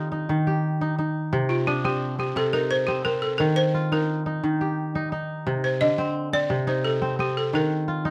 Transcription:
Already playing: kora D#3 C4 D#4 F4, balafon G4
0.12 kora D#4
0.29 kora D#3
0.47 kora G4
0.81 kora D#4
0.98 kora D#4
1.33 kora C3
1.49 balafon F4
1.67 kora D4, balafon G4
1.84 kora C4, balafon G4
2.19 kora C4, balafon G4
2.36 kora C3, balafon A4
2.53 kora D#4, balafon A#4
2.71 balafon C5
2.87 kora C4, balafon G4
3.05 kora C4, balafon A#4
3.22 balafon A4
3.38 kora D#3, balafon A#4
3.56 balafon C5
3.74 kora F4
3.92 kora D#4, balafon A#4
4.26 kora D#4
4.43 kora D#3
4.61 kora G4
4.95 kora D#4
5.12 kora D#4
5.47 kora C3
5.64 balafon C5
5.81 kora D3, balafon D#5
5.98 kora C4
6.33 kora C4, balafon D5
6.50 kora C3
6.67 kora D#4, balafon C5
6.84 balafon A4
7.02 kora C4
7.19 kora C4, balafon G4
7.37 balafon A4
7.53 kora D#3, balafon A#4
7.88 kora F4
8.05 kora D#4

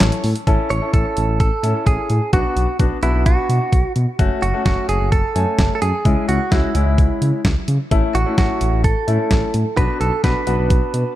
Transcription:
Already playing: grand piano C#4 E4 A4
0.00 analog synth bass A1, snare, clap, closed hi-hat
0.12 closed hi-hat
0.24 analog synth bass A2, open hi-hat
0.35 closed hi-hat
0.47 analog synth bass A1, grand piano C#4 E4 A4, kick, closed hi-hat
0.70 analog synth bass A1, clean electric guitar C#5, closed hi-hat
0.82 grand piano C#4 E4 A4
0.94 analog synth bass A1, clean electric guitar A4, kick, closed hi-hat
1.17 analog synth bass A1, closed hi-hat
1.28 analog synth bass A1
1.40 analog synth bass A1, clean electric guitar A4, kick, closed hi-hat
1.63 analog synth bass A2, grand piano C#4 E4 A4, closed hi-hat
1.86 analog synth bass A1, clean electric guitar G#4, kick, closed hi-hat
2.10 analog synth bass A2, closed hi-hat
2.33 analog synth bass B1, grand piano B3 D4 F#4, clean electric guitar F#4, kick, closed hi-hat
2.56 analog synth bass B1, closed hi-hat
2.79 analog synth bass B1, grand piano B3 D4 F#4, kick, closed hi-hat
3.03 analog synth bass B1, grand piano B3 D4 F#4, clean electric guitar E4, closed hi-hat
3.14 analog synth bass B1
3.26 analog synth bass B1, clean electric guitar F#4, kick, closed hi-hat
3.49 analog synth bass B2, closed hi-hat
3.72 analog synth bass B1, kick, closed hi-hat
3.96 analog synth bass B2, closed hi-hat
4.19 analog synth bass F#1, grand piano A3 C#4 F#4, kick, closed hi-hat
4.42 analog synth bass F#1, clean electric guitar F#4, closed hi-hat
4.54 grand piano A3 C#4 F#4
4.66 analog synth bass F#1, clean electric guitar F#4, kick, snare, closed hi-hat
4.89 analog synth bass F#1, clean electric guitar G#4, closed hi-hat
5.01 analog synth bass F#1
5.12 analog synth bass F#1, clean electric guitar A4, kick, closed hi-hat
5.35 analog synth bass F#2, grand piano A3 C#4 G#5, closed hi-hat
5.59 analog synth bass F#1, kick, snare, closed hi-hat
5.75 clean electric guitar A4
5.82 analog synth bass F#2, clean electric guitar G#4, closed hi-hat
6.05 analog synth bass C#2, grand piano G#3 C#4 E4, kick, closed hi-hat
6.28 analog synth bass C#2, clean electric guitar F#4, closed hi-hat
6.52 analog synth bass C#2, grand piano G#3 C#4 F#4, clean electric guitar E4, kick, snare, closed hi-hat
6.75 analog synth bass C#2, grand piano G#3 C#4 E4, closed hi-hat
6.87 analog synth bass C#2
6.98 analog synth bass C#2, kick, closed hi-hat
7.22 analog synth bass C#3, closed hi-hat
7.45 analog synth bass C#2, kick, snare, closed hi-hat
7.68 analog synth bass C#3, closed hi-hat
7.91 analog synth bass A1, grand piano A3 C#4 E4, kick, closed hi-hat
8.15 analog synth bass A1, clean electric guitar F#4, closed hi-hat
8.26 grand piano A3 C#4 E4
8.38 analog synth bass A1, clean electric guitar F#4, kick, snare, closed hi-hat
8.61 analog synth bass A1, closed hi-hat
8.73 analog synth bass A1
8.84 analog synth bass A1, clean electric guitar A4, kick, closed hi-hat
9.08 analog synth bass A2, grand piano A3 C#4 E4, closed hi-hat
9.31 analog synth bass A1, kick, snare, closed hi-hat
9.54 analog synth bass A2, closed hi-hat
9.77 analog synth bass B1, grand piano B3 D4 F#4, clean electric guitar B4, kick, closed hi-hat
10.01 analog synth bass B1, clean electric guitar A4, closed hi-hat
10.24 analog synth bass B1, grand piano B3 D4 F#4, clean electric guitar B4, kick, snare, closed hi-hat
10.47 analog synth bass B1, grand piano B3 D4 F#4, closed hi-hat
10.59 analog synth bass B1
10.70 analog synth bass B1, kick, closed hi-hat
10.94 analog synth bass B2, closed hi-hat

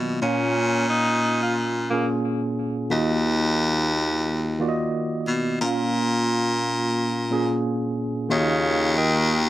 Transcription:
Already playing: baritone saxophone B2, tine electric piano D#3 F#3 A#3 F4 D5 D#5
0.21 tine electric piano A#2 A#3 C#4 F4 F5, baritone saxophone A#2, tenor saxophone C#4
0.89 tenor saxophone D#4
1.43 tenor saxophone F4
1.90 tine electric piano A#2 A#3 C#4 F4 G#4, tenor saxophone A#3
2.90 baritone saxophone D#2, tine electric piano D#3 A#3 F4 F#4 D#5
4.60 tine electric piano D#3 A#3 F4 F#4 D5
4.68 tine electric piano D#5
5.27 baritone saxophone B2
5.61 tine electric piano A#2 A#3 C#4 F4 F5, baritone saxophone A#2
7.30 tine electric piano A#2 A#3 C#4 F4 G#4
8.29 baritone saxophone D#2, tenor saxophone C#3, tine electric piano D#3 A#3 F4 F#4 D#5
8.98 tenor saxophone D#3

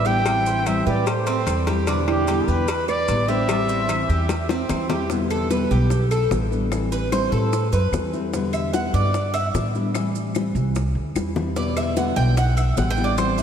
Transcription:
Already playing: upright bass A1
0.05 nylon-string guitar D3 G3 B3 E4 E5, cuban tres G4, trumpet G5, maracas
0.25 nylon-string guitar E3 G3 C4 E4, cowbell, claves, maracas
0.46 cuban tres C5, maracas
0.65 nylon-string guitar E3 G3 C4 E4 C5, trumpet E5, cowbell, claves, maracas
0.86 upright bass A2, cuban tres G4, nylon-string guitar B4, trumpet D5, maracas
1.06 nylon-string guitar A4, trumpet C5, muted nylon-string guitar stroke, cowbell, maracas
1.27 cuban tres C4, cowbell, maracas
1.46 upright bass E2, nylon-string guitar E3 G3 C4 E4, cowbell, claves, maracas
1.67 nylon-string guitar G3 C4 E4, cuban tres G4, cowbell, maracas
1.87 nylon-string guitar B2 D3 G3 B3 E4, cuban tres D4, cowbell, maracas
2.07 nylon-string guitar E4, trumpet G4, cowbell, claves
2.27 nylon-string guitar B2 D3 G3 B3 E4, cuban tres G4, cowbell, maracas
2.48 upright bass E2, nylon-string guitar G4, trumpet B4, maracas
2.68 cuban tres B4, muted nylon-string guitar stroke, cowbell, maracas
2.88 nylon-string guitar B4, cuban tres D5, trumpet D5, claves, maracas
3.08 upright bass A1, nylon-string guitar D3 G3 B3 E4, cowbell, maracas
3.28 nylon-string guitar D3 G3 B3 E4 C5, cuban tres G4, trumpet E5, maracas
3.49 nylon-string guitar E3 G3 C4 E4, cowbell, claves, maracas
3.69 cuban tres C5, maracas
3.89 nylon-string guitar E3 G3 C4 E4, cowbell, claves, maracas
4.09 upright bass E2, cuban tres G4, maracas
4.29 muted nylon-string guitar stroke, cowbell, high bongo, maracas
4.49 cuban tres C4, cowbell, high bongo, maracas
4.69 upright bass E2, nylon-string guitar E3 G3 C4 E4, cowbell, low bongo, claves, maracas
4.90 nylon-string guitar G3 C4 E4, cuban tres G4, cowbell, low bongo, maracas
5.09 nylon-string guitar B2 D3 G3 B3 E4, high bongo, maracas
5.30 cuban tres A4, claves, maracas
5.50 nylon-string guitar B2 D3 G3 B3 E4, cuban tres B4, high bongo, maracas
5.71 upright bass B1, cuban tres G4, maracas
5.90 muted nylon-string guitar stroke, high bongo, maracas
6.11 cuban tres A4, claves, maracas
6.31 upright bass A1, nylon-string guitar D3 G3 B3 E4, high bongo, low bongo, maracas
6.51 nylon-string guitar D3 G3 B3 E4, maracas
6.71 nylon-string guitar E3 G3 C4 E4, high bongo, claves, maracas
6.92 cuban tres B4, high bongo, maracas
7.12 nylon-string guitar E3 G3 C4 E4, cuban tres C5, high bongo, claves, maracas
7.32 upright bass A2, cuban tres A4, high bongo, maracas
7.52 muted nylon-string guitar stroke, high bongo, maracas
7.73 upright bass F#2, cuban tres B4, maracas
7.92 upright bass E2, nylon-string guitar E3 G3 C4 E4, high bongo, low bongo, claves, maracas
8.13 nylon-string guitar G3 C4 E4, high bongo, maracas
8.33 nylon-string guitar B2 D3 G3 B3 E4, high bongo, maracas
8.53 cuban tres E5, claves, maracas
8.73 nylon-string guitar B2 D3 G3 B3 E4, cuban tres F#5, high bongo, maracas
8.94 upright bass G2, cuban tres D5, maracas
9.14 muted nylon-string guitar stroke, high bongo, maracas
9.34 cuban tres E5, claves, maracas
9.54 upright bass A2, nylon-string guitar D3 G3 B3 E4, high bongo, low bongo, maracas
9.75 nylon-string guitar D3 G3 B3 E4, maracas
9.95 nylon-string guitar E3 G3 C4 E4, high bongo, claves, maracas
10.15 high bongo, maracas
10.35 nylon-string guitar E3 G3 C4 E4, high bongo, claves, maracas
10.55 upright bass C2, high bongo, maracas
10.75 muted nylon-string guitar stroke, high bongo, maracas
10.95 upright bass D2
11.15 upright bass E2, nylon-string guitar E3 G3 C4 E4, high bongo, claves, maracas
11.36 nylon-string guitar G3 C4 E4, low bongo, maracas
11.56 nylon-string guitar B2 D3 G3 B3 E4, cuban tres D5, high bongo, maracas
11.77 cuban tres E5, claves, maracas
11.97 nylon-string guitar B2 D3 G3 B3 E4, cuban tres F#5, high bongo, maracas
12.16 upright bass B1, cuban tres G5, maracas
12.37 cuban tres F#5, muted nylon-string guitar stroke, high bongo, maracas
12.57 cuban tres E5, claves, maracas
12.77 upright bass A1, nylon-string guitar D3 G3 B3 E4, cuban tres F#5, high bongo, low bongo, maracas
12.91 cuban tres G5
12.97 nylon-string guitar D3 G3 B3 E4, maracas
13.04 cuban tres D5
13.17 nylon-string guitar E3 G3 C4 E4, cuban tres C5, high bongo, claves, maracas
13.38 cuban tres E4, high bongo, maracas

